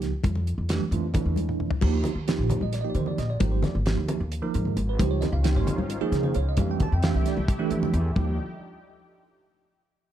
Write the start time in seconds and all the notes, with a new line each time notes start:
Already playing: F3 A#3 D#4 G4
0.01 C#2, snare, closed hi-hat, low conga
0.24 F2, kick, closed hi-hat, high conga
0.35 low conga
0.47 closed hi-hat, low conga
0.58 F2
0.69 E3 A3 D4 G4, snare, closed hi-hat, low conga
0.80 high conga
0.91 F2 E3 A3 D4 F4, closed hi-hat, low conga
1.14 E3 A3 D4 E4, kick, closed hi-hat, low conga
1.25 E2, low conga
1.36 closed hi-hat, high conga
1.49 high tom
1.59 F2, mid tom
1.70 floor tom, low conga
1.81 D#2 F3 A#3 D#4 G4, kick, crash, high conga
2.04 closed hi-hat, low conga
2.15 D#2, low conga
2.28 F3 A#3 D#4 G4, snare, closed hi-hat
2.39 A#1
2.50 closed hi-hat, low conga
2.61 A#1 D#5, high conga
2.73 D5, snare, closed hi-hat, low conga
2.81 F3 A#3 D#4 G4 D#5
2.90 D5
2.95 D#3 C5, closed hi-hat
3.06 D5, low conga
3.18 A#1 D#5, snare, closed hi-hat
3.30 D5
3.40 G#1 F3 A#3 D#4 G4 A#4, kick, closed hi-hat, high conga
3.52 C5
3.62 D5, snare, closed hi-hat, low conga
3.74 G#1, low conga
3.85 F3 A#3 D#4 G4, snare, closed hi-hat
3.97 D#2
4.08 closed hi-hat, low conga
4.20 D#2
4.32 closed hi-hat, low conga
4.42 F3 A#3 D#4 A#4
4.54 G#2, closed hi-hat
4.65 low conga
4.77 G#1, closed hi-hat
4.89 B4
4.98 C#2 D#3 F3 A#3 C4 C#4 D#4 F4 G4 C5, kick, closed hi-hat, high conga
5.11 C#5
5.21 D#5, snare, closed hi-hat, low conga
5.32 C#2 F5, low conga
5.44 F3 A#3 D#4 G4 G5, snare, closed hi-hat
5.56 G#1 C#5
5.67 closed hi-hat, low conga
5.78 G#1, high conga
5.90 closed hi-hat, low conga
6.01 F3 A#3 D#4 G#4
6.12 C#3, snare, closed hi-hat
6.23 C5, low conga
6.34 C#2 C#5, closed hi-hat
6.49 D#5
6.57 F2 E3 A3 D4 E4 G4 F5, kick, closed hi-hat, high conga
6.71 G5
6.80 A5, kick, closed hi-hat, low conga
6.92 F2 G5
7.03 E3 A3 D4 G4 F5, snare, closed hi-hat
7.14 C2 E5, low conga
7.26 D5, snare, closed hi-hat
7.37 C2, high conga
7.48 kick, closed hi-hat
7.59 E3 A3 D4 G4
7.71 F3, closed hi-hat
7.83 low conga
7.93 E2, closed hi-hat
8.16 D#2 F3 A#3 D4 D#4 G4, kick, high conga